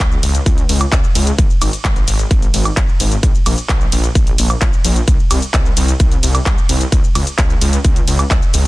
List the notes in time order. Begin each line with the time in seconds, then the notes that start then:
0.00 C#2, kick, clap, shaker
0.12 shaker
0.23 C#2, open hi-hat, ride, shaker
0.35 closed hi-hat, shaker
0.46 C#2, kick, closed hi-hat, shaker
0.58 closed hi-hat, shaker
0.69 C#2, open hi-hat, ride, shaker
0.81 closed hi-hat, high woodblock, shaker
0.92 C#2, kick, clap, closed hi-hat, shaker
1.04 shaker
1.15 C#2, open hi-hat, ride, shaker
1.27 closed hi-hat, shaker
1.38 G#1, kick, closed hi-hat, shaker
1.50 shaker
1.62 G#1, open hi-hat, ride, high woodblock, shaker
1.73 closed hi-hat, shaker
1.85 G#1, kick, clap, closed hi-hat, shaker
1.96 closed hi-hat, shaker
2.08 G#1, open hi-hat, ride, shaker
2.19 closed hi-hat, shaker
2.31 G#1, kick, closed hi-hat, shaker
2.42 closed hi-hat, shaker
2.54 G#1, open hi-hat, ride, shaker
2.65 closed hi-hat, high woodblock, shaker
2.77 G#1, kick, clap, closed hi-hat, shaker
2.89 shaker
3.00 G#1, open hi-hat, ride, shaker
3.12 closed hi-hat, shaker
3.23 A#1, kick, closed hi-hat, shaker
3.35 shaker
3.46 A#1, open hi-hat, ride, high woodblock, shaker
3.58 closed hi-hat, shaker
3.69 A#1, kick, clap, closed hi-hat, shaker
3.81 shaker
3.92 A#1, open hi-hat, ride, shaker
4.04 closed hi-hat, shaker
4.15 A#1, kick, closed hi-hat, shaker
4.27 closed hi-hat, shaker
4.38 A#1, open hi-hat, ride, shaker
4.50 closed hi-hat, high woodblock, shaker
4.61 A#1, kick, clap, closed hi-hat, shaker
4.73 shaker
4.85 A#1, open hi-hat, ride, shaker
4.96 closed hi-hat, shaker
5.08 C2, kick, closed hi-hat, shaker
5.19 shaker
5.31 C2, open hi-hat, ride, high woodblock, shaker
5.42 closed hi-hat, shaker
5.54 C2, kick, clap, closed hi-hat, shaker
5.66 shaker
5.77 C2, open hi-hat, ride, shaker
5.88 closed hi-hat, shaker
6.00 C2, kick, closed hi-hat, shaker
6.12 closed hi-hat, shaker
6.23 C2, open hi-hat, ride, shaker
6.35 closed hi-hat, high woodblock, shaker
6.46 C2, kick, clap, closed hi-hat, shaker
6.58 shaker
6.69 C2, open hi-hat, ride, shaker
6.81 closed hi-hat, shaker
6.92 C#2, kick, closed hi-hat, shaker
7.04 shaker
7.15 C#2, open hi-hat, ride, high woodblock, shaker
7.27 closed hi-hat, shaker
7.38 C#2, kick, clap, closed hi-hat, shaker
7.50 shaker
7.61 C#2, open hi-hat, ride, shaker
7.73 closed hi-hat, shaker
7.84 C#2, kick, closed hi-hat, shaker
7.96 closed hi-hat, shaker
8.08 C#2, open hi-hat, ride, shaker
8.19 closed hi-hat, high woodblock, shaker
8.31 C#2, kick, clap, closed hi-hat, shaker
8.42 shaker
8.54 C#2, open hi-hat, ride, shaker